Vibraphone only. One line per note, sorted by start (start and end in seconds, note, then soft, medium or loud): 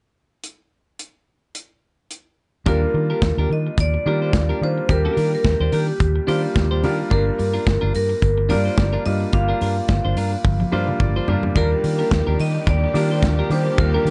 2.68 3.53 A#4 medium
3.53 3.77 D#5 medium
3.80 4.65 D5 medium
4.64 4.91 C5 medium
4.91 5.34 A#4 medium
5.35 5.75 A#4 medium
5.74 6.80 G4 medium
7.13 7.91 A#4 medium
7.96 8.52 A#4 medium
8.50 9.07 D5 medium
9.06 9.34 D#5 medium
9.33 10.96 F5 medium
11.57 12.42 A#4 medium
12.41 12.69 D#5 medium
12.69 13.47 D5 medium
13.52 13.80 C5 medium
13.80 14.10 A#4 medium